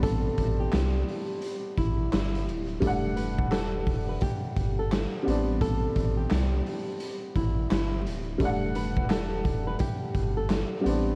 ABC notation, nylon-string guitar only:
X:1
M:4/4
L:1/16
Q:"Swing 16ths" 1/4=86
K:Em
V:1 name="Nylon-string guitar"
A3 G6- G E2 E2 z2 | z2 B2 A3 B G3 A z4 | A3 G6- G E2 E2 z2 | z2 B2 A3 B G3 A z4 |]